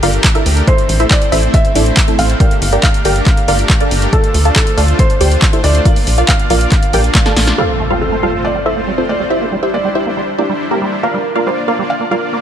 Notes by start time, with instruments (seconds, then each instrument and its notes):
0.02 analog synth bass G1, supersaw synth A3 D4 G4 A#4, synth pluck F4 A#4 D5 F5, open hi-hat
0.13 supersaw synth A3 D4 G4 A#4, closed hi-hat
0.24 kick, clap, closed hi-hat
0.35 supersaw synth A3 D4 G4 A#4, synth pluck E4 A4 A#4 E5, closed hi-hat
0.46 analog synth bass D2, supersaw synth A3 D4 G4 A#4, open hi-hat
0.57 closed hi-hat
0.68 supersaw synth A3 C4 E4 C5, synth pluck E4 A4 C5 E5, felt piano C5, kick, closed hi-hat
0.78 closed hi-hat
0.89 analog synth bass A1, open hi-hat
1.00 supersaw synth A3 C4 E4 C5, synth pluck E4 A4 C5 E5, closed hi-hat
1.11 supersaw synth A3 C4 E4 C5, felt piano D5, kick, clap, closed hi-hat
1.22 closed hi-hat
1.32 analog synth bass A1, supersaw synth A3 C4 E4 C5, synth pluck E4 A4 C5 E5, open hi-hat
1.43 supersaw synth A3 C4 E4 C5, closed hi-hat
1.54 felt piano E5, kick, closed hi-hat
1.65 closed hi-hat
1.75 analog synth bass A1, supersaw synth A3 C4 E4 C5, synth pluck D4 E4 A4 D5, open hi-hat
1.86 supersaw synth A3 C4 E4 C5, closed hi-hat
1.97 kick, clap, closed hi-hat
2.08 synth pluck A3 C4 E4 A4, supersaw synth A3 C4 E4 C5, closed hi-hat
2.19 analog synth bass A1, supersaw synth A3 C4 E4 C5, felt piano F5, open hi-hat
2.30 closed hi-hat
2.40 supersaw synth A3 D4 G4 A#4, synth pluck G4 A#4 D5 G5, kick, closed hi-hat
2.51 closed hi-hat
2.62 analog synth bass G1, open hi-hat
2.72 supersaw synth A3 D4 G4 A#4, synth pluck G4 A#4 D5 G5, closed hi-hat
2.83 supersaw synth A3 D4 G4 A#4, felt piano F5, kick, clap, closed hi-hat
2.94 closed hi-hat
3.05 analog synth bass G1, supersaw synth A3 D4 G4 A#4, synth pluck G4 A#4 D5 G5, open hi-hat
3.16 supersaw synth A3 D4 G4 A#4, closed hi-hat
3.26 kick, clap, closed hi-hat
3.37 closed hi-hat
3.48 analog synth bass G1, supersaw synth A3 D4 G4 A#4, synth pluck F4 A#4 D5 F5, open hi-hat
3.59 supersaw synth A3 D4 G4 A#4, closed hi-hat
3.70 kick, clap, closed hi-hat
3.80 supersaw synth A3 D4 G4 A#4, synth pluck D4 A4 A#4 D5, closed hi-hat
3.91 analog synth bass G1, supersaw synth A3 D4 G4 A#4, open hi-hat
4.02 closed hi-hat
4.13 supersaw synth A3 D4 F4 C5, synth pluck A4 D5 F5 A5, felt piano A4, kick, closed hi-hat
4.24 closed hi-hat
4.34 analog synth bass D2, open hi-hat
4.45 supersaw synth A3 D4 F4 C5, synth pluck A4 D5 F5 A5, closed hi-hat
4.56 supersaw synth A3 D4 F4 C5, felt piano A4, kick, clap, closed hi-hat
4.67 closed hi-hat
4.77 analog synth bass D2, supersaw synth A3 D4 F4 C5, synth pluck A4 D5 F5 A5, open hi-hat
4.88 supersaw synth A3 D4 F4 C5, closed hi-hat
4.99 felt piano C5, kick, closed hi-hat
5.10 closed hi-hat
5.21 analog synth bass D2, supersaw synth A3 D4 F4 C5, synth pluck G4 C5 D5 G5, open hi-hat
5.31 supersaw synth A3 D4 F4 C5, closed hi-hat
5.42 kick, clap, closed hi-hat
5.53 supersaw synth A3 D4 F4 C5, synth pluck E4 A4 C5 E5, closed hi-hat
5.64 analog synth bass D2, supersaw synth A3 D4 F4 C5, felt piano D5, open hi-hat
5.75 closed hi-hat
5.85 supersaw synth A#3 D4 F4 D5, synth pluck F4 A#4 D5 F5, kick, closed hi-hat
5.96 open hi-hat
6.07 analog synth bass A#1, open hi-hat
6.18 supersaw synth A#3 D4 F4 D5, synth pluck F4 A#4 D5 F5, closed hi-hat
6.29 supersaw synth A#3 D4 F4 D5, felt piano F5, kick, clap, closed hi-hat
6.39 closed hi-hat
6.50 analog synth bass A#1, supersaw synth A#3 D4 F4 D5, synth pluck F4 A#4 D5 F5, open hi-hat
6.61 supersaw synth A#3 D4 F4 D5, closed hi-hat
6.72 kick, clap, closed hi-hat
6.83 closed hi-hat
6.93 analog synth bass A#1, supersaw synth A#3 D4 F4 D5, synth pluck G4 A#4 D5 G5, open hi-hat
7.04 supersaw synth A#3 D4 F4 D5, closed hi-hat
7.15 kick, snare, clap, closed hi-hat
7.26 supersaw synth A#3 D4 F4 D5, synth pluck A4 D5 F5 A5, snare, closed hi-hat
7.37 analog synth bass A#1, supersaw synth A#3 D4 F4 D5, snare, open hi-hat
7.47 snare, closed hi-hat
7.58 acid bass G3, supersaw synth A3 C4 F4 C5, synth pluck F4 A4 C5 F5, felt piano A4, impact
7.80 acid bass A3
7.90 acid bass G3, supersaw synth A3 C4 F4 C5, synth pluck F4 A4 C5 F5
8.01 supersaw synth A3 C4 F4 C5, felt piano A4
8.12 acid bass A3
8.23 acid bass G3, supersaw synth A3 C4 F4 C5, synth pluck F4 A4 C5 F5
8.33 supersaw synth A3 C4 F4 C5
8.44 acid bass A3, felt piano D5
8.55 acid bass G3
8.66 supersaw synth A3 C4 F4 C5, synth pluck E4 A4 C5 E5
8.77 acid bass A3, supersaw synth A3 C4 F4 C5
8.87 acid bass G3
8.98 supersaw synth A3 C4 F4 C5, synth pluck C4 F4 A4 C5
9.09 supersaw synth A3 C4 F4 C5, acid bass A3, felt piano D5
9.20 acid bass G3
9.30 supersaw synth G3 D4 E4 C5, synth pluck E4 G4 C5 E5
9.41 acid bass A#3
9.52 acid bass G3
9.63 supersaw synth G3 D4 E4 C5, synth pluck E4 G4 C5 E5
9.74 supersaw synth G3 D4 E4 C5, acid bass A#3, felt piano D5
9.85 acid bass G3
9.95 supersaw synth G3 D4 E4 C5, synth pluck E4 G4 C5 E5
10.06 supersaw synth G3 D4 E4 C5, acid bass A#3
10.17 acid bass G3
10.38 supersaw synth G3 D4 E4 C5, acid bass A#3, synth pluck D4 E4 G4 D5
10.49 supersaw synth G3 D4 E4 C5, acid bass G3
10.71 supersaw synth G3 D4 E4 C5, acid bass A#3, synth pluck A#3 E4 G4 A#4
10.82 supersaw synth G3 D4 E4 C5, acid bass G3
11.03 supersaw synth A#3 D4 F4 D5, acid bass A#3, synth pluck F4 A#4 D5 F5, felt piano A#4
11.14 acid bass G3
11.35 acid bass A#3, supersaw synth A#3 D4 F4 D5, synth pluck F4 A#4 D5 F5
11.47 acid bass G3, supersaw synth A#3 D4 F4 D5, felt piano C5
11.68 acid bass A#3, supersaw synth A#3 D4 F4 D5, synth pluck F4 A#4 D5 F5
11.79 acid bass G3, supersaw synth A#3 D4 F4 D5
11.90 felt piano F5
12.01 acid bass A#3
12.11 acid bass G3, supersaw synth A#3 D4 F4 D5, synth pluck F4 A#4 D5 F5
12.22 supersaw synth A#3 D4 F4 D5
12.33 acid bass A#3